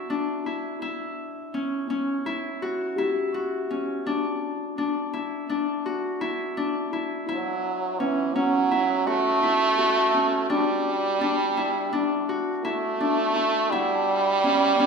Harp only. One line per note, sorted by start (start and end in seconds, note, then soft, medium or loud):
0.00 0.46 E4 medium
0.00 1.82 F#4 medium
0.10 1.60 D4 medium
0.46 0.81 E4 medium
0.82 2.26 E4 medium
1.54 1.90 C#4 medium
1.90 3.70 C#4 medium
2.26 2.98 E4 medium
2.62 3.34 F#4 medium
2.98 5.13 E4 medium
3.34 5.78 F#4 medium
3.71 4.12 C#4 medium
4.06 4.78 D4 medium
4.78 5.49 D4 medium
5.13 6.21 E4 medium
5.49 6.57 D4 medium
5.86 8.29 F#4 medium
6.21 6.92 E4 medium
6.57 8.06 D4 medium
6.93 7.28 E4 medium
7.29 8.71 E4 medium
8.00 8.35 C#4 medium
8.36 10.14 C#4 medium
8.71 9.43 E4 medium
9.07 9.78 F#4 medium
9.43 11.57 E4 medium
9.79 12.22 F#4 medium
10.14 10.56 C#4 medium
10.50 11.21 D4 medium
11.21 11.92 D4 medium
11.57 12.64 E4 medium
11.93 13.00 D4 medium
12.29 14.73 F#4 medium
12.65 13.36 E4 medium
13.00 14.50 D4 medium
13.36 13.72 E4 medium
13.72 14.87 E4 medium
14.44 14.79 C#4 medium
14.80 14.87 C#4 medium